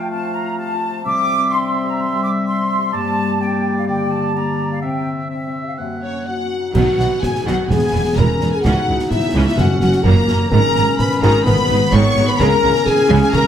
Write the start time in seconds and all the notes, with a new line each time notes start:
Already playing: F3 A3 C4 F4 C5 F5
0.00 G5
0.10 C4 A5
0.27 C5
0.34 A#5
0.43 F4
0.58 G4 A5
0.74 F4
0.89 C5
1.05 C3 G3 C4 E5 D6
1.21 G4
1.37 C4
1.53 D4 C6
1.68 C4
1.84 G4
1.89 A#5
1.99 G3 C6
2.16 G4
2.23 D6
2.31 C4
2.47 D4 C6
2.63 C4
2.79 G4
2.93 G2 G3 A#3 D5 A5
3.10 G4
3.26 A#3
3.40 A#3 C4 D5 G5
3.57 A#3
3.73 G4
3.78 F5
3.88 D3 A#3 D5 G5
4.04 G4
4.12 A5
4.20 A#3
4.35 A#3 C4 D5 A#5
4.52 A#3
4.67 G4
4.72 F5
4.82 C3 C4 E5 G5
5.00 G4
5.16 C4
5.30 C4 D4 E5
5.48 C4
5.64 G4 F5
5.78 F#2 F#3 A#3 E5 F#5
5.96 A#4
6.02 C#4 C#5
6.12 C#4
6.27 D#4 F#4 F#5
6.44 C#4
6.60 A#4
6.75 B1 B2 D#3 F#3 F#4 F#5, concert bass drum, crash
6.92 B4
6.99 B1 B2 F#3 B3, snare
7.07 D#4
7.21 C#4 G#4 G#5, concert bass drum, snare
7.35 D#4, snare
7.45 B1 B2 D#3 F#3 F#4 F#5, snare
7.54 B4
7.69 E1 E2 E3 G#3 B3 G#4 G#5, concert bass drum, snare
7.85 B4
7.93 E1 E2 B3 E4
8.16 E1 E2 E3 G#3 C#4 F#4 A#4 A#5, concert bass drum
8.33 G#4
8.40 E1 E2 G#3 B3, snare
8.48 B4 G#5
8.52 G#4 G#5
8.63 C#2 C#3 E3 C#4 D#4 F#4 F#5, concert bass drum, snare
8.80 C#5
8.88 C#2 G#3 E4
8.96 G#4, snare
9.10 E4 F#4 E5, concert bass drum, snare
9.27 G#4
9.35 C#2 E3 C#4
9.42 C#5 E5
9.46 E4 E5
9.57 F#1 F#2 A#3 C#4 F#4 F#5, concert bass drum, snare
9.73 C#5
9.80 F#1 F#2 C#4 F#4 F#5, snare
9.89 F#4, snare
10.04 F#1 F#2 F#3 A#3 E4 A#4 A#5, concert bass drum
10.20 F#4
10.28 F#1 F#2 A#3 C#4, snare
10.37 C#5
10.50 G#1 G#2 D#3 G#3 C#4 A#4 A#5, concert bass drum
10.68 G#4
10.76 G#1 G#2 D#3 B3, snare
10.84 D#4
10.99 B4 B5, concert bass drum, snare
11.11 snare
11.15 D#4
11.21 G#1 G#2 D#3 G#3 A#4 A#5, snare
11.31 G#4
11.44 G#1 G#2 D#3 B3 B4 B5, concert bass drum, snare
11.62 G#4
11.69 G#1 G#2 G#3 D#4
11.78 D#4
11.92 G#1 G#2 D#3 G#3 C#4 C#5 C#6, concert bass drum
12.09 D#4
12.16 G#1 G#2 D#3 B3, snare
12.24 G#4 B5
12.29 B4 B5
12.39 C#2 C#3 G#3 C#4 A#4 A#5, concert bass drum, snare
12.55 G#4
12.63 C#2 C#3 C#4
12.70 E4
12.75 snare
12.86 D#4 G#4 G#5, concert bass drum, snare
13.01 E4
13.09 C#2 C#3 G#3
13.17 G#4 G#5
13.22 G#4 G#5
13.32 C#2 C#3 G#3 C#4 A#4 A#5, concert bass drum, snare